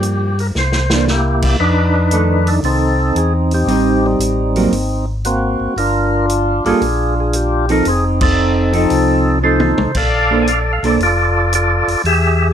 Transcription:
0.00 0.51 G2 medium
0.00 0.31 F3 soft
0.00 0.32 A#3 soft
0.00 0.32 D4 medium
0.00 0.42 G4 medium
0.00 closed hi-hat soft
0.39 0.47 A#4 medium
0.39 open hi-hat soft
0.55 1.56 C2 medium
0.55 1.05 C5 medium
0.55 snare soft
0.72 snare soft
0.90 1.06 E3 medium
0.90 1.06 A#3 medium
0.90 1.07 D4 medium
0.90 snare medium
1.08 1.57 A#3 medium
1.08 1.57 E4 medium
1.08 1.57 G4 medium
1.08 snare medium
1.42 kick medium
1.42 crash medium
1.59 2.60 F2 medium
1.59 2.60 D4 medium
1.59 2.60 D#4 medium
1.59 2.50 B4 loud
2.11 2.93 D#3 medium
2.11 2.93 A3 medium
2.11 closed hi-hat medium
2.47 2.55 A4 medium
2.47 open hi-hat soft
2.63 3.12 C2 medium
2.63 3.53 C4 medium
2.63 3.53 D#4 medium
2.63 3.18 A4 medium
2.63 open hi-hat soft
3.15 3.64 E2 medium
3.15 3.33 G#4 medium
3.15 closed hi-hat medium
3.51 4.05 C4 medium
3.51 4.05 D#4 medium
3.51 4.07 G4 medium
3.51 open hi-hat soft
3.66 4.16 A1 medium
3.66 4.49 G3 medium
3.66 4.49 C4 medium
3.66 4.49 D#4 medium
3.66 open hi-hat soft
4.06 4.70 G3 medium
4.06 5.05 C4 medium
4.06 5.06 D#4 medium
4.19 4.68 A1 medium
4.19 closed hi-hat medium
4.56 4.71 F#3 medium
4.56 4.71 A#3 medium
4.56 4.72 C4 medium
4.56 open hi-hat soft
4.71 5.56 G#1 medium
4.71 open hi-hat soft
5.25 5.74 A#3 medium
5.25 5.74 C4 medium
5.25 5.79 F#4 medium
5.25 closed hi-hat medium
5.60 5.68 G#1 soft
5.76 6.61 G1 medium
5.76 6.64 D4 medium
5.76 6.65 F4 medium
5.76 6.26 A#4 loud
5.76 open hi-hat soft
6.29 closed hi-hat medium
6.65 6.73 G1 soft
6.65 6.80 G3 medium
6.65 6.80 A#3 medium
6.65 7.66 D4 medium
6.65 6.81 F4 medium
6.65 7.66 F4 medium
6.65 7.15 G#4 medium
6.65 6.81 A4 medium
6.65 open hi-hat soft
6.81 7.82 A#1 medium
6.81 open hi-hat soft
7.20 7.36 G#4 medium
7.33 7.71 G4 medium
7.33 closed hi-hat medium
7.69 7.84 F3 medium
7.69 7.85 C4 medium
7.69 7.85 D#4 medium
7.69 7.85 A4 medium
7.69 7.88 A#4 medium
7.69 open hi-hat soft
7.85 8.86 F1 medium
7.85 8.20 C4 medium
7.85 8.20 D#4 medium
7.85 open hi-hat soft
7.89 8.05 G#4 loud
8.21 9.39 C4 medium
8.21 9.39 D#4 medium
8.21 9.39 A4 loud
8.21 kick medium
8.21 crash medium
8.73 9.39 F3 medium
8.73 9.39 C4 medium
8.73 9.39 D#4 medium
8.73 9.40 A4 medium
8.73 open hi-hat soft
8.90 9.74 C2 medium
8.90 open hi-hat soft
9.43 9.75 F3 medium
9.43 9.75 C4 soft
9.43 9.92 D#4 medium
9.43 9.75 D#4 medium
9.43 9.92 A4 medium
9.43 9.76 A4 medium
9.43 9.97 C5 medium
9.60 high tom medium
9.78 9.87 C2 soft
9.78 mid tom medium
9.95 10.79 A#1 medium
9.95 10.96 A4 medium
9.95 10.60 D5 medium
9.95 10.43 F5 loud
9.95 kick medium
9.95 crash medium
10.31 10.46 A#3 medium
10.31 10.46 D4 medium
10.31 10.46 A4 medium
10.31 10.46 C5 medium
10.42 10.47 G#5 medium
10.47 10.59 F5 medium
10.47 closed hi-hat medium
10.61 10.72 D5 medium
10.73 10.84 F5 medium
10.83 10.98 B1 medium
10.83 10.98 A#3 medium
10.83 10.99 D4 medium
10.83 10.99 A4 medium
10.83 10.99 C5 medium
10.83 11.00 D5 medium
10.83 open hi-hat soft
10.99 11.83 F1 medium
10.99 11.54 F4 medium
10.99 11.54 A4 medium
10.99 11.54 D5 loud
10.99 open hi-hat soft
11.53 12.02 F4 medium
11.53 12.02 A4 medium
11.53 12.02 D5 medium
11.53 closed hi-hat medium
11.88 11.96 F1 soft
11.88 open hi-hat soft
12.04 12.53 E2 medium
12.04 12.53 G4 medium
12.04 12.53 G#4 medium
12.04 12.48 E5 loud
12.04 open hi-hat soft

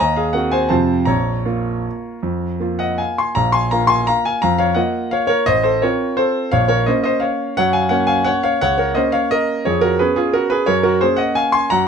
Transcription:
0.00 0.34 D#2 medium
0.00 0.16 D#5 medium
0.00 0.16 A#5 loud
0.16 0.33 G#4 medium
0.16 0.34 F5 medium
0.33 0.68 C4 soft
0.33 0.68 F#4 soft
0.33 0.51 A#4 medium
0.33 0.52 F#5 medium
0.51 0.68 C5 medium
0.51 0.71 G#5 medium
0.69 1.07 F2 medium
0.69 1.04 C3 medium
0.69 1.04 C4 medium
0.69 1.05 F4 medium
0.69 1.05 C5 medium
0.69 1.07 A5 medium
1.05 1.45 A#1 medium
1.05 2.95 C#5 medium
1.05 2.98 A#5 medium
1.45 2.19 A#3 soft
1.45 2.19 F4 medium
2.23 2.59 F2 medium
2.60 3.32 A#3 soft
2.60 3.33 F4 soft
2.79 2.98 D#5 medium
2.79 2.99 F#5 medium
2.98 3.17 F5 medium
2.98 3.18 G#5 medium
3.18 3.35 G#5 medium
3.18 3.36 C6 medium
3.35 3.70 A#1 medium
3.35 3.53 F5 medium
3.35 3.53 A#5 loud
3.52 3.70 G#5 medium
3.52 3.71 C6 loud
3.71 4.38 A#3 soft
3.71 4.39 F4 soft
3.71 3.89 F5 medium
3.71 3.89 A#5 loud
3.87 4.06 G#5 medium
3.87 4.06 C6 loud
4.07 4.24 F5 medium
4.07 4.25 A#5 loud
4.25 4.41 F5 medium
4.25 4.42 G#5 loud
4.42 4.76 F2 medium
4.42 4.57 F5 medium
4.42 4.59 A#5 loud
4.58 4.76 C#5 medium
4.58 4.76 F5 loud
4.74 5.44 A#3 soft
4.74 5.44 F4 medium
4.74 5.10 D#5 medium
4.74 5.12 F#5 medium
5.11 5.26 C#5 medium
5.11 5.30 F5 loud
5.27 5.46 A#4 medium
5.27 5.46 C#5 loud
5.46 5.82 A1 medium
5.46 5.62 C5 medium
5.46 5.64 D#5 loud
5.63 5.81 A4 medium
5.63 5.82 C5 medium
5.82 6.49 C4 soft
5.82 6.49 F4 medium
5.82 6.16 A#4 medium
5.82 6.18 C#5 medium
6.17 6.51 A4 medium
6.17 6.52 C5 medium
6.51 6.86 A#1 medium
6.51 6.67 C#5 medium
6.51 6.69 F5 loud
6.68 6.86 A#4 medium
6.68 6.87 C#5 loud
6.86 7.54 A#3 soft
6.86 7.54 C#4 medium
6.86 7.04 C5 medium
6.86 7.02 D#5 medium
7.04 7.22 C5 medium
7.04 7.22 D#5 medium
7.20 7.54 C#5 medium
7.20 7.56 F5 medium
7.57 7.91 F#2 medium
7.57 7.73 C#5 medium
7.57 7.74 F#5 loud
7.73 7.90 F5 medium
7.73 7.91 G#5 loud
7.89 8.58 A#3 medium
7.89 8.58 C#4 medium
7.89 8.07 C#5 medium
7.89 8.08 F#5 loud
8.07 8.25 F5 medium
8.07 8.26 G#5 loud
8.24 8.43 C#5 medium
8.24 8.43 F#5 loud
8.43 8.61 C#5 medium
8.43 8.61 F5 loud
8.61 8.95 C#2 medium
8.61 8.76 C#5 medium
8.61 8.79 F#5 loud
8.78 8.95 A#4 medium
8.78 8.96 C#5 medium
8.95 9.62 A#3 medium
8.95 9.62 C#4 medium
8.95 9.12 C5 medium
8.95 9.13 D#5 medium
9.12 9.30 C#5 medium
9.12 9.31 F5 loud
9.31 9.64 A#4 medium
9.31 9.65 D#5 loud
9.65 9.99 F2 medium
9.65 9.81 G#4 medium
9.65 9.82 C#5 medium
9.81 9.98 F#4 medium
9.81 9.99 A#4 loud
9.99 10.65 B3 medium
9.99 10.65 C#4 medium
9.99 10.15 G#4 medium
9.99 10.17 B4 medium
10.16 10.34 F4 medium
10.16 10.34 G#4 medium
10.33 10.51 F#4 medium
10.33 10.51 A#4 medium
10.50 10.67 G#4 medium
10.50 10.67 B4 loud
10.66 11.00 F#2 medium
10.66 10.82 A#4 medium
10.66 10.84 C#5 loud
10.83 11.00 F#4 medium
10.83 11.01 A#4 medium
11.01 11.68 A#3 soft
11.01 11.68 C#4 medium
11.01 11.18 G#4 medium
11.01 11.19 C5 medium
11.16 11.35 D#5 medium
11.16 11.36 F#5 loud
11.35 11.53 F5 medium
11.35 11.53 G#5 loud
11.52 11.70 G#5 medium
11.52 11.70 C6 loud
11.70 11.88 F#2 medium
11.70 11.87 F#5 medium
11.70 11.87 A#5 loud

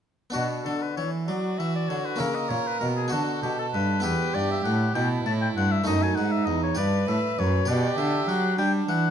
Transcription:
0.30 0.63 B2 medium
0.30 2.14 B3 soft
0.30 2.15 D4 soft
0.30 0.48 F#4 medium
0.30 2.16 F#4 soft
0.35 0.63 B2 medium
0.64 0.73 D3 medium
0.64 0.94 D3 medium
0.64 0.84 A4 medium
0.82 0.96 B4 medium
0.96 1.29 E3 medium
0.96 1.25 E3 medium
0.96 1.11 C#5 medium
1.27 1.60 F#3 medium
1.27 1.56 F#3 medium
1.27 2.21 F#4 medium
1.27 1.60 D5 medium
1.58 1.88 E3 medium
1.58 1.87 E3 medium
1.58 1.74 E5 medium
1.75 1.90 D5 medium
1.88 1.97 D3 medium
1.88 2.18 D3 medium
1.88 2.06 C#5 medium
2.05 2.21 B4 medium
2.16 2.28 C#3 medium
2.16 3.07 A#3 soft
2.16 3.08 C#4 medium
2.16 3.09 E4 medium
2.16 2.36 A#4 medium
2.20 2.48 C#3 medium
2.20 3.11 A#4 medium
2.35 2.50 D#5 medium
2.49 2.58 A#2 medium
2.49 2.78 A#2 medium
2.49 2.68 C#5 medium
2.67 2.79 B4 medium
2.80 3.11 B2 medium
2.80 3.09 B2 medium
2.80 2.87 A#4 medium
2.96 3.14 G#4 medium
3.08 3.19 D3 medium
3.08 3.99 B3 medium
3.08 4.00 F#4 medium
3.08 4.05 A4 medium
3.12 3.40 D3 medium
3.12 3.41 F#4 medium
3.42 3.50 B2 medium
3.42 3.71 B2 soft
3.42 3.57 G4 medium
3.59 3.66 A4 medium
3.73 4.03 G2 medium
3.73 4.02 G2 medium
3.73 4.03 B4 medium
4.00 4.12 E2 medium
4.00 4.61 B3 medium
4.00 5.81 E4 medium
4.00 5.82 G4 medium
4.00 4.97 G4 medium
4.00 4.36 B4 medium
4.04 4.32 E2 medium
4.34 4.64 G2 medium
4.34 4.62 G2 medium
4.34 4.52 D5 medium
4.51 4.63 E5 medium
4.64 4.95 A2 medium
4.64 4.93 A2 medium
4.64 4.94 F#5 medium
4.94 5.25 B2 medium
4.94 5.23 B2 medium
4.94 5.86 E4 medium
4.94 5.08 G5 medium
5.25 5.55 A2 medium
5.25 5.53 A2 medium
5.25 5.33 A5 medium
5.41 5.48 G5 medium
5.56 5.86 G2 medium
5.56 5.84 G2 medium
5.56 5.73 F#5 loud
5.71 5.86 E5 medium
5.84 6.16 F#2 medium
5.84 6.15 A3 medium
5.84 6.74 D#4 medium
5.84 6.79 D#4 medium
5.84 6.75 A4 medium
5.84 6.04 D#5 loud
5.88 6.15 F#2 medium
6.02 6.17 G#5 medium
6.15 6.49 G#2 medium
6.15 6.45 G#2 medium
6.15 6.33 F#5 medium
6.31 6.46 E5 medium
6.45 6.74 E2 medium
6.45 6.77 E2 medium
6.45 6.61 D#5 medium
6.63 6.77 C#5 medium
6.75 7.05 G2 medium
6.75 7.07 G2 medium
6.75 7.64 G4 medium
6.75 7.65 B4 medium
6.75 7.68 B4 medium
6.75 7.09 D5 loud
7.08 7.16 A2 medium
7.08 7.35 A2 medium
7.08 7.40 E5 medium
7.38 7.67 F#2 medium
7.38 7.66 F#2 medium
7.38 7.69 C#5 loud
7.65 7.96 B2 medium
7.65 9.10 G4 medium
7.65 8.57 G4 medium
7.65 9.10 B4 medium
7.65 7.99 D5 medium
7.98 8.27 D3 medium
7.98 8.25 D3 medium
7.98 8.30 E5 loud
8.28 8.60 F#3 medium
8.28 8.56 F#3 medium
8.28 8.58 F#5 medium
8.58 8.88 G3 medium
8.58 8.86 G3 medium
8.58 9.10 D4 medium
8.58 8.72 G5 loud
8.88 9.10 E3 medium
8.88 9.10 F#5 loud

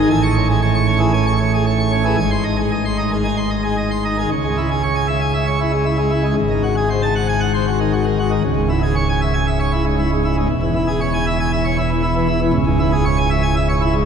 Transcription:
0.10 2.15 A1 medium
0.10 2.15 A2 medium
0.10 0.22 G#5 medium
0.23 0.34 C#6 loud
0.36 0.47 C#5 medium
0.49 0.60 G#4 medium
0.62 0.73 C#5 medium
0.75 0.86 C#6 medium
0.87 0.99 C#4 medium
0.87 0.99 C#5 medium
0.99 1.11 E3 medium
0.99 1.12 G#4 medium
1.13 1.25 C#4 medium
1.13 1.25 G#5 medium
1.26 1.38 C#6 medium
1.40 1.51 C#5 medium
1.53 1.65 G#4 medium
1.66 1.78 C#5 medium
1.79 1.91 C#6 medium
1.92 2.04 C#4 medium
1.92 2.04 C#5 medium
2.05 2.16 E3 medium
2.05 2.16 G#4 medium
2.17 4.26 G#1 medium
2.17 4.26 G#2 medium
2.17 2.30 G#5 medium
2.31 2.43 C6 medium
2.44 2.56 D#5 medium
2.58 2.70 G#4 medium
2.71 2.83 D#5 medium
2.85 2.97 C6 medium
2.98 3.10 D#4 medium
2.98 3.10 D#5 medium
3.12 3.23 D#3 medium
3.12 3.23 G#4 medium
3.25 3.36 D#4 medium
3.25 3.36 G#5 medium
3.37 3.49 C6 medium
3.50 3.62 D#5 medium
3.64 3.76 G#4 medium
3.77 3.89 D#5 medium
3.91 4.03 C6 medium
4.05 4.16 D#4 medium
4.05 4.16 D#5 medium
4.18 4.29 D#3 soft
4.18 4.29 G#4 soft
4.31 6.33 C#2 medium
4.31 6.33 C#3 medium
4.44 4.56 G#3 medium
4.57 4.69 E4 medium
4.70 4.82 G#4 medium
4.83 4.94 C#5 medium
4.95 5.07 G#5 medium
5.08 5.19 E5 medium
5.21 5.32 G#5 medium
5.34 5.45 E5 medium
5.47 5.59 C#5 medium
5.60 5.71 E4 medium
5.72 5.84 G#3 medium
5.85 5.97 E4 medium
5.98 6.10 G#3 medium
6.10 6.22 E4 medium
6.23 6.35 G#3 medium
6.36 8.39 G#1 medium
6.36 8.39 G#2 medium
6.50 6.61 D#3 medium
6.63 6.75 F#4 medium
6.77 6.88 G#4 medium
6.90 7.01 C5 medium
7.03 7.14 A5 medium
7.16 7.27 F#5 medium
7.29 7.40 G#5 medium
7.40 7.52 F#5 medium
7.54 7.65 C5 medium
7.67 7.78 F#4 medium
7.80 7.91 D#3 medium
7.93 8.04 F#4 medium
8.06 8.17 D#3 medium
8.19 8.30 F#4 medium
8.31 8.42 D#3 medium
8.44 10.45 C#1 medium
8.44 10.45 C#2 medium
8.56 8.68 G#2 medium
8.69 8.81 E4 medium
8.83 8.94 G#4 medium
8.96 9.07 C#5 medium
9.09 9.20 G#5 medium
9.22 9.33 E5 medium
9.34 9.45 G#5 medium
9.47 9.59 E5 medium
9.60 9.71 C#5 medium
9.73 9.84 E4 medium
9.87 9.97 G#2 medium
9.99 10.10 E4 medium
10.12 10.23 G#2 medium
10.25 10.36 E4 medium
10.37 10.48 G#2 medium
10.49 12.50 E1 medium
10.49 12.50 E2 medium
10.62 10.73 E3 medium
10.76 10.87 E4 medium
10.88 10.99 G#4 medium
11.01 11.12 C#5 medium
11.14 11.25 G#5 medium
11.27 11.38 E5 medium
11.40 11.51 G#5 medium
11.53 11.64 E5 medium
11.65 11.76 C#5 medium
11.78 11.89 E4 medium
11.91 12.02 E3 medium
12.03 12.15 E4 medium
12.15 12.27 E3 medium
12.28 12.39 E4 medium
12.41 12.52 E3 medium
12.53 14.05 C#1 medium
12.53 14.05 C#2 loud
12.66 12.78 G#2 medium
12.79 12.91 E4 medium
12.92 13.04 G#4 medium
13.05 13.16 C#5 medium
13.18 13.29 G#5 loud
13.30 13.42 E5 medium
13.43 13.54 G#5 medium
13.56 13.68 E5 medium
13.69 13.80 C#5 medium
13.81 13.93 E4 medium
13.95 14.05 G#2 medium

